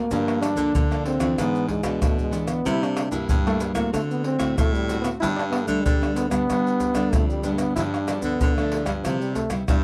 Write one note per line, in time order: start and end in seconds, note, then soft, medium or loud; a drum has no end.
0.00 0.41 A#3 medium
0.11 0.72 G2 medium
0.11 0.53 G2 medium
0.11 0.54 F3 medium
0.11 0.54 A#3 medium
0.11 0.55 D4 medium
0.11 pandeiro medium
0.11 maracas medium
0.11 surdo medium
0.28 pandeiro soft
0.28 tamborim medium
0.28 maracas soft
0.42 1.03 D4 loud
0.42 pandeiro medium
0.42 tamborim medium
0.42 maracas medium
0.55 0.72 D3 medium
0.55 0.84 F3 medium
0.55 0.85 A#3 medium
0.55 0.85 D4 medium
0.55 pandeiro medium
0.55 maracas medium
0.55 surdo soft
0.74 1.36 D3 soft
0.74 1.16 D3 medium
0.74 pandeiro medium
0.74 maracas medium
0.74 surdo loud
0.91 1.18 F3 medium
0.91 1.18 A#3 medium
0.91 1.18 D4 medium
0.91 pandeiro soft
0.91 tamborim medium
0.91 maracas soft
1.05 1.41 C4 medium
1.05 pandeiro medium
1.19 1.35 F2 medium
1.19 1.80 E3 medium
1.19 1.80 B3 medium
1.19 1.81 D4 medium
1.19 pandeiro medium
1.19 tamborim medium
1.19 maracas medium
1.19 surdo soft
1.38 1.99 G#2 soft
1.38 1.80 G#2 medium
1.38 1.69 B3 medium
1.38 pandeiro medium
1.38 tamborim medium
1.38 maracas medium
1.38 surdo medium
1.55 pandeiro soft
1.55 maracas soft
1.68 2.06 G#3 medium
1.68 pandeiro medium
1.68 surdo soft
1.83 1.98 B2 medium
1.83 2.29 E3 medium
1.83 2.29 B3 medium
1.83 2.29 D4 medium
1.83 pandeiro medium
1.83 tamborim medium
1.83 maracas medium
1.83 surdo soft
2.02 2.63 G#2 medium
2.02 2.34 B2 medium
2.02 2.19 A3 medium
2.02 pandeiro medium
2.02 tamborim medium
2.02 maracas medium
2.02 surdo medium
2.19 2.50 G#3 medium
2.19 pandeiro soft
2.19 maracas soft
2.19 surdo soft
2.31 2.60 E3 medium
2.31 2.60 B3 medium
2.31 2.61 D4 medium
2.31 pandeiro medium
2.31 maracas medium
2.48 2.69 B3 medium
2.48 pandeiro medium
2.48 tamborim medium
2.48 maracas medium
2.66 3.07 C3 loud
2.66 3.27 C3 medium
2.66 3.10 G3 medium
2.66 3.10 A#3 medium
2.66 2.85 E4 loud
2.66 3.10 E4 medium
2.66 pandeiro medium
2.66 maracas medium
2.66 surdo medium
2.83 3.15 D4 medium
2.83 pandeiro soft
2.83 tamborim medium
2.83 maracas soft
2.97 pandeiro medium
2.97 tamborim medium
2.97 maracas medium
3.11 3.26 G2 medium
3.11 3.40 G3 medium
3.11 3.40 A#3 medium
3.11 3.40 E4 medium
3.11 pandeiro soft
3.11 maracas medium
3.11 surdo soft
3.29 3.71 G2 loud
3.29 3.91 G2 medium
3.29 pandeiro medium
3.29 maracas medium
3.29 surdo medium
3.47 3.74 G3 medium
3.47 3.61 A3 medium
3.47 3.74 A#3 medium
3.47 3.74 E4 medium
3.47 pandeiro soft
3.47 tamborim medium
3.47 maracas soft
3.60 pandeiro medium
3.60 maracas medium
3.75 3.90 A2 medium
3.75 4.36 A3 medium
3.75 3.92 A#3 medium
3.75 4.37 C4 medium
3.75 4.37 F#4 medium
3.75 pandeiro medium
3.75 tamborim medium
3.75 maracas medium
3.75 surdo soft
3.93 4.35 D3 medium
3.93 4.55 D3 soft
3.93 4.01 A3 medium
3.93 pandeiro medium
3.93 tamborim medium
3.93 maracas medium
3.93 surdo medium
4.11 4.25 B3 medium
4.11 pandeiro soft
4.11 maracas soft
4.24 4.56 C4 medium
4.24 pandeiro medium
4.38 4.54 A2 medium
4.38 4.84 A3 medium
4.38 4.84 C4 medium
4.38 4.84 F#4 medium
4.38 pandeiro medium
4.38 tamborim medium
4.38 maracas medium
4.38 surdo soft
4.58 5.13 A2 loud
4.58 4.76 A3 medium
4.58 pandeiro medium
4.58 tamborim medium
4.58 maracas medium
4.58 surdo loud
4.74 5.01 G3 medium
4.74 pandeiro soft
4.74 maracas soft
4.74 surdo soft
4.89 5.17 A3 medium
4.89 5.17 C4 medium
4.89 5.17 F#4 medium
4.89 pandeiro medium
4.89 maracas medium
5.02 5.10 B3 medium
5.02 pandeiro medium
5.02 tamborim medium
5.02 maracas medium
5.20 5.63 G2 loud
5.20 5.83 G2 medium
5.20 5.65 G3 soft
5.20 5.66 B3 medium
5.20 5.66 D4 medium
5.20 5.28 E4 loud
5.20 pandeiro medium
5.20 maracas medium
5.20 surdo medium
5.36 5.44 D4 medium
5.36 pandeiro soft
5.36 tamborim medium
5.36 maracas soft
5.50 5.66 B3 medium
5.50 pandeiro medium
5.50 tamborim medium
5.64 5.82 D3 loud
5.64 5.96 G3 medium
5.64 5.84 A3 medium
5.64 5.96 B3 medium
5.64 5.96 D4 medium
5.64 pandeiro medium
5.64 maracas medium
5.64 surdo soft
5.82 6.27 D3 medium
5.82 6.47 D3 medium
5.82 6.16 G3 medium
5.82 pandeiro medium
5.82 maracas medium
5.82 surdo medium
6.01 6.29 G3 medium
6.01 6.29 B3 medium
6.01 6.29 D4 medium
6.01 pandeiro soft
6.01 tamborim medium
6.01 maracas soft
6.15 6.29 B3 medium
6.15 pandeiro medium
6.15 maracas medium
6.29 6.46 G2 medium
6.29 6.43 G3 medium
6.29 7.14 B3 loud
6.29 6.43 B3 medium
6.29 6.43 D4 medium
6.29 pandeiro medium
6.29 tamborim medium
6.29 maracas medium
6.29 surdo soft
6.49 7.11 G2 soft
6.49 6.91 G2 medium
6.49 6.93 G3 soft
6.49 6.93 B3 soft
6.49 6.93 D4 medium
6.49 pandeiro medium
6.49 tamborim medium
6.49 maracas medium
6.49 surdo medium
6.67 pandeiro soft
6.67 maracas soft
6.80 pandeiro medium
6.80 maracas medium
6.80 surdo soft
6.94 7.10 D3 medium
6.94 7.39 G3 medium
6.94 7.39 B3 medium
6.94 7.39 D4 medium
6.94 pandeiro medium
6.94 tamborim medium
6.94 maracas medium
6.94 surdo soft
7.12 7.43 F2 medium
7.12 7.74 D3 soft
7.12 7.28 A3 medium
7.12 pandeiro medium
7.12 tamborim medium
7.12 maracas medium
7.12 surdo loud
7.29 7.59 G3 medium
7.29 pandeiro soft
7.29 maracas soft
7.29 surdo soft
7.44 7.74 G2 medium
7.44 7.72 G3 medium
7.44 7.72 B3 medium
7.44 7.72 D4 medium
7.44 pandeiro medium
7.44 maracas medium
7.57 7.75 B3 medium
7.57 pandeiro medium
7.57 tamborim medium
7.57 maracas medium
7.76 8.38 G2 medium
7.76 8.19 G2 medium
7.76 7.96 F3 medium
7.76 7.96 B3 medium
7.76 7.97 D4 medium
7.76 7.83 E4 loud
7.76 pandeiro medium
7.76 maracas medium
7.76 surdo medium
7.94 8.24 D4 medium
7.94 pandeiro soft
7.94 tamborim medium
7.94 maracas soft
8.08 8.39 F3 medium
8.08 8.39 B3 medium
8.08 8.39 D4 medium
8.08 pandeiro medium
8.08 tamborim medium
8.08 maracas medium
8.22 8.38 D3 loud
8.22 8.58 B3 medium
8.22 pandeiro medium
8.22 maracas medium
8.22 surdo soft
8.40 9.02 D3 medium
8.40 8.83 D3 loud
8.40 pandeiro medium
8.40 maracas medium
8.40 surdo medium
8.56 9.01 F3 medium
8.56 8.85 A3 medium
8.56 9.01 B3 medium
8.56 9.01 D4 medium
8.56 pandeiro soft
8.56 tamborim medium
8.56 maracas soft
8.72 pandeiro medium
8.85 9.02 G2 medium
8.85 8.94 G3 medium
8.85 pandeiro medium
8.85 tamborim medium
8.85 maracas medium
8.85 surdo soft
9.03 9.66 C3 soft
9.03 9.47 C3 medium
9.03 9.22 F3 medium
9.03 9.35 G3 soft
9.03 9.35 B3 medium
9.03 9.36 E4 medium
9.03 pandeiro medium
9.03 tamborim medium
9.03 maracas medium
9.03 surdo medium
9.21 9.35 G3 medium
9.21 pandeiro soft
9.21 maracas soft
9.35 9.50 A3 medium
9.35 pandeiro medium
9.35 maracas medium
9.35 surdo soft
9.50 9.63 G3 medium
9.50 9.63 B3 medium
9.50 9.63 E4 medium
9.50 pandeiro medium
9.50 tamborim medium
9.50 maracas medium
9.50 surdo soft
9.68 9.84 G2 medium
9.68 9.84 G3 medium
9.68 9.77 G3 medium
9.68 9.84 B3 soft
9.68 9.84 E4 medium
9.68 pandeiro medium
9.68 tamborim medium
9.68 maracas medium
9.68 surdo loud